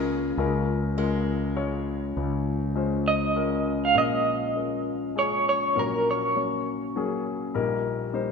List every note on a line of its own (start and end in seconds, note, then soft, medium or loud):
0.00 0.34 C#2 medium
0.00 0.34 C#3 medium
0.00 0.35 C#3 medium
0.00 0.38 G#3 medium
0.00 0.37 A#3 medium
0.00 0.14 C#4 soft
0.00 0.38 C#4 medium
0.00 0.38 F4 medium
0.00 0.37 G#4 medium
0.00 0.40 G#4 medium
0.00 0.39 A#4 medium
0.37 2.13 C#2 medium
0.37 2.13 C#3 medium
0.37 0.88 G#3 medium
0.37 0.88 C#4 medium
0.37 0.88 F4 medium
0.37 0.88 A#4 medium
0.98 1.47 G#3 medium
0.98 2.05 G#3 soft
0.98 1.47 C#4 medium
0.98 1.47 F4 medium
0.98 1.47 A#4 medium
1.56 2.55 G#3 medium
1.56 2.55 C#4 medium
1.56 2.55 F4 medium
1.56 2.55 C#5 medium
2.17 3.92 C#2 medium
2.17 3.92 C#3 medium
2.75 3.25 G#3 medium
2.75 3.25 C#4 medium
2.75 3.26 F4 medium
2.75 3.26 C5 medium
3.08 3.78 D#5 medium
3.36 3.93 G#3 medium
3.36 3.93 C#4 medium
3.36 3.93 F4 medium
3.36 3.93 A#4 medium
3.85 3.98 F5 medium
3.94 5.71 A#1 soft
3.94 5.71 A#2 soft
3.94 4.45 G#3 medium
3.94 4.45 C#4 medium
3.94 4.45 F4 medium
3.94 4.45 A#4 medium
3.94 5.18 D#5 medium
4.56 5.05 G#3 soft
4.56 5.05 C#4 soft
4.56 5.05 F4 soft
4.56 5.05 A#4 medium
5.16 5.76 G#3 medium
5.16 5.75 C#4 soft
5.16 5.76 F4 medium
5.16 5.76 G#4 medium
5.16 5.45 C#5 medium
5.49 5.78 C#5 medium
5.76 7.50 A#1 soft
5.76 7.50 A#2 medium
5.76 6.25 F#3 medium
5.76 6.25 A#3 medium
5.76 6.25 C#4 soft
5.76 6.25 A#4 medium
5.76 6.08 A#4 medium
6.11 7.23 C#5 medium
6.35 6.84 F#3 medium
6.35 6.85 A#3 soft
6.35 6.85 C#4 soft
6.35 6.85 C#5 medium
6.96 7.55 F#3 medium
6.96 7.53 A#3 medium
6.96 7.55 C#4 medium
6.96 7.55 G#4 medium
7.54 8.32 A#1 medium
7.54 8.32 A#2 medium
7.54 8.03 G3 medium
7.54 8.03 A#3 medium
7.54 8.03 D#4 medium
7.54 8.04 A#4 medium
8.13 8.32 G3 medium
8.13 8.32 A#3 medium
8.13 8.32 D#4 medium
8.13 8.32 C5 medium